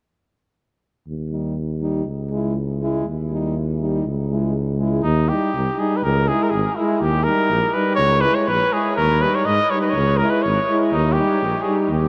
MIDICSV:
0, 0, Header, 1, 5, 480
1, 0, Start_track
1, 0, Tempo, 496278
1, 1030, Time_signature, 2, 2, 24, 8
1, 5827, Tempo, 489396
1, 11769, End_track
2, 0, Start_track
2, 0, Title_t, "Cornet"
2, 0, Program_c, 0, 56
2, 4868, Note_on_c, 0, 63, 81
2, 5113, Note_on_c, 0, 67, 72
2, 5128, Note_off_c, 0, 63, 0
2, 5602, Note_on_c, 0, 68, 72
2, 5617, Note_off_c, 0, 67, 0
2, 5773, Note_on_c, 0, 71, 61
2, 5788, Note_off_c, 0, 68, 0
2, 5836, Note_on_c, 0, 70, 92
2, 5851, Note_off_c, 0, 71, 0
2, 6078, Note_on_c, 0, 68, 79
2, 6093, Note_off_c, 0, 70, 0
2, 6226, Note_on_c, 0, 70, 76
2, 6241, Note_off_c, 0, 68, 0
2, 6295, Note_on_c, 0, 68, 66
2, 6309, Note_off_c, 0, 70, 0
2, 6544, Note_on_c, 0, 64, 63
2, 6559, Note_off_c, 0, 68, 0
2, 6788, Note_on_c, 0, 67, 84
2, 6802, Note_off_c, 0, 64, 0
2, 7018, Note_on_c, 0, 70, 93
2, 7032, Note_off_c, 0, 67, 0
2, 7504, Note_on_c, 0, 71, 70
2, 7519, Note_off_c, 0, 70, 0
2, 7711, Note_off_c, 0, 71, 0
2, 7717, Note_on_c, 0, 73, 104
2, 7971, Note_on_c, 0, 71, 99
2, 7985, Note_off_c, 0, 73, 0
2, 8105, Note_on_c, 0, 73, 78
2, 8120, Note_off_c, 0, 71, 0
2, 8233, Note_on_c, 0, 71, 89
2, 8248, Note_off_c, 0, 73, 0
2, 8480, Note_on_c, 0, 68, 73
2, 8495, Note_off_c, 0, 71, 0
2, 8704, Note_off_c, 0, 68, 0
2, 8710, Note_on_c, 0, 70, 89
2, 8959, Note_on_c, 0, 71, 91
2, 8974, Note_off_c, 0, 70, 0
2, 9091, Note_on_c, 0, 73, 72
2, 9105, Note_off_c, 0, 71, 0
2, 9190, Note_on_c, 0, 75, 96
2, 9205, Note_off_c, 0, 73, 0
2, 9436, Note_on_c, 0, 73, 71
2, 9450, Note_off_c, 0, 75, 0
2, 9539, Note_off_c, 0, 73, 0
2, 9545, Note_on_c, 0, 71, 65
2, 9631, Note_on_c, 0, 73, 90
2, 9646, Note_off_c, 0, 71, 0
2, 9891, Note_on_c, 0, 70, 91
2, 9905, Note_off_c, 0, 73, 0
2, 10022, Note_on_c, 0, 71, 83
2, 10037, Note_off_c, 0, 70, 0
2, 10141, Note_on_c, 0, 73, 95
2, 10156, Note_off_c, 0, 71, 0
2, 10520, Note_off_c, 0, 73, 0
2, 10620, Note_on_c, 0, 63, 83
2, 10829, Note_on_c, 0, 67, 86
2, 10843, Note_off_c, 0, 63, 0
2, 11317, Note_on_c, 0, 68, 70
2, 11332, Note_off_c, 0, 67, 0
2, 11466, Note_off_c, 0, 68, 0
2, 11592, Note_on_c, 0, 67, 73
2, 11769, Note_off_c, 0, 67, 0
2, 11769, End_track
3, 0, Start_track
3, 0, Title_t, "French horn"
3, 0, Program_c, 1, 60
3, 1274, Note_on_c, 1, 63, 38
3, 1508, Note_off_c, 1, 63, 0
3, 1766, Note_on_c, 1, 63, 50
3, 1995, Note_off_c, 1, 63, 0
3, 2261, Note_on_c, 1, 64, 51
3, 2483, Note_off_c, 1, 64, 0
3, 2727, Note_on_c, 1, 64, 56
3, 2956, Note_off_c, 1, 64, 0
3, 3211, Note_on_c, 1, 63, 52
3, 3438, Note_off_c, 1, 63, 0
3, 3684, Note_on_c, 1, 63, 50
3, 3914, Note_off_c, 1, 63, 0
3, 4175, Note_on_c, 1, 64, 39
3, 4399, Note_off_c, 1, 64, 0
3, 4656, Note_on_c, 1, 64, 56
3, 4879, Note_off_c, 1, 64, 0
3, 5131, Note_on_c, 1, 63, 51
3, 5355, Note_off_c, 1, 63, 0
3, 5592, Note_on_c, 1, 63, 62
3, 5823, Note_off_c, 1, 63, 0
3, 6084, Note_on_c, 1, 64, 56
3, 6313, Note_off_c, 1, 64, 0
3, 6573, Note_on_c, 1, 64, 65
3, 6798, Note_off_c, 1, 64, 0
3, 7046, Note_on_c, 1, 63, 63
3, 7276, Note_off_c, 1, 63, 0
3, 7535, Note_on_c, 1, 63, 59
3, 7761, Note_off_c, 1, 63, 0
3, 7993, Note_on_c, 1, 64, 56
3, 8230, Note_off_c, 1, 64, 0
3, 8483, Note_on_c, 1, 64, 56
3, 8716, Note_off_c, 1, 64, 0
3, 8974, Note_on_c, 1, 63, 53
3, 9201, Note_off_c, 1, 63, 0
3, 9442, Note_on_c, 1, 63, 61
3, 9675, Note_off_c, 1, 63, 0
3, 9940, Note_on_c, 1, 64, 66
3, 10163, Note_off_c, 1, 64, 0
3, 10406, Note_on_c, 1, 64, 69
3, 10635, Note_off_c, 1, 64, 0
3, 10880, Note_on_c, 1, 63, 58
3, 11111, Note_off_c, 1, 63, 0
3, 11354, Note_on_c, 1, 63, 59
3, 11586, Note_off_c, 1, 63, 0
3, 11769, End_track
4, 0, Start_track
4, 0, Title_t, "Trombone"
4, 0, Program_c, 2, 57
4, 1266, Note_on_c, 2, 55, 41
4, 1504, Note_off_c, 2, 55, 0
4, 1758, Note_on_c, 2, 55, 54
4, 1991, Note_off_c, 2, 55, 0
4, 2232, Note_on_c, 2, 56, 53
4, 2468, Note_off_c, 2, 56, 0
4, 2727, Note_on_c, 2, 56, 60
4, 2956, Note_off_c, 2, 56, 0
4, 3209, Note_on_c, 2, 55, 42
4, 3437, Note_off_c, 2, 55, 0
4, 3684, Note_on_c, 2, 55, 45
4, 3914, Note_off_c, 2, 55, 0
4, 4171, Note_on_c, 2, 56, 47
4, 4397, Note_off_c, 2, 56, 0
4, 4631, Note_on_c, 2, 56, 50
4, 4866, Note_off_c, 2, 56, 0
4, 5119, Note_on_c, 2, 55, 50
4, 5349, Note_off_c, 2, 55, 0
4, 5594, Note_on_c, 2, 55, 54
4, 5825, Note_off_c, 2, 55, 0
4, 6079, Note_on_c, 2, 56, 63
4, 6310, Note_off_c, 2, 56, 0
4, 6550, Note_on_c, 2, 56, 71
4, 6787, Note_off_c, 2, 56, 0
4, 7040, Note_on_c, 2, 55, 50
4, 7273, Note_off_c, 2, 55, 0
4, 7516, Note_on_c, 2, 55, 58
4, 7751, Note_off_c, 2, 55, 0
4, 8010, Note_on_c, 2, 56, 50
4, 8239, Note_off_c, 2, 56, 0
4, 8466, Note_on_c, 2, 56, 49
4, 8707, Note_off_c, 2, 56, 0
4, 8944, Note_on_c, 2, 55, 47
4, 9186, Note_off_c, 2, 55, 0
4, 9423, Note_on_c, 2, 55, 54
4, 9665, Note_off_c, 2, 55, 0
4, 9928, Note_on_c, 2, 56, 57
4, 10157, Note_off_c, 2, 56, 0
4, 10406, Note_on_c, 2, 56, 61
4, 10635, Note_off_c, 2, 56, 0
4, 10880, Note_on_c, 2, 55, 61
4, 11111, Note_off_c, 2, 55, 0
4, 11353, Note_on_c, 2, 55, 63
4, 11585, Note_off_c, 2, 55, 0
4, 11769, End_track
5, 0, Start_track
5, 0, Title_t, "Tuba"
5, 0, Program_c, 3, 58
5, 1042, Note_on_c, 3, 39, 51
5, 1979, Note_off_c, 3, 39, 0
5, 1984, Note_on_c, 3, 37, 58
5, 2931, Note_off_c, 3, 37, 0
5, 2961, Note_on_c, 3, 39, 60
5, 3898, Note_off_c, 3, 39, 0
5, 3926, Note_on_c, 3, 37, 61
5, 4858, Note_off_c, 3, 37, 0
5, 4869, Note_on_c, 3, 39, 85
5, 5132, Note_off_c, 3, 39, 0
5, 5353, Note_on_c, 3, 36, 75
5, 5483, Note_off_c, 3, 36, 0
5, 5837, Note_on_c, 3, 37, 89
5, 6100, Note_off_c, 3, 37, 0
5, 6311, Note_on_c, 3, 32, 76
5, 6443, Note_off_c, 3, 32, 0
5, 6789, Note_on_c, 3, 39, 76
5, 7055, Note_off_c, 3, 39, 0
5, 7265, Note_on_c, 3, 34, 73
5, 7400, Note_off_c, 3, 34, 0
5, 7747, Note_on_c, 3, 37, 81
5, 8014, Note_off_c, 3, 37, 0
5, 8229, Note_on_c, 3, 34, 64
5, 8363, Note_off_c, 3, 34, 0
5, 8719, Note_on_c, 3, 39, 76
5, 8983, Note_off_c, 3, 39, 0
5, 9196, Note_on_c, 3, 44, 70
5, 9328, Note_off_c, 3, 44, 0
5, 9668, Note_on_c, 3, 37, 89
5, 9934, Note_off_c, 3, 37, 0
5, 10163, Note_on_c, 3, 32, 83
5, 10293, Note_off_c, 3, 32, 0
5, 10631, Note_on_c, 3, 39, 93
5, 10894, Note_off_c, 3, 39, 0
5, 11113, Note_on_c, 3, 34, 63
5, 11244, Note_off_c, 3, 34, 0
5, 11577, Note_on_c, 3, 39, 80
5, 11769, Note_off_c, 3, 39, 0
5, 11769, End_track
0, 0, End_of_file